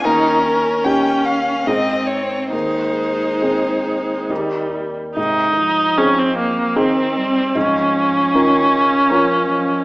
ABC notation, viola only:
X:1
M:3/4
L:1/16
Q:1/4=75
K:Ab
V:1 name="Viola"
D4 D4 C4 | A,8 G,3 z | E4 D C B,2 C4 | D12 |]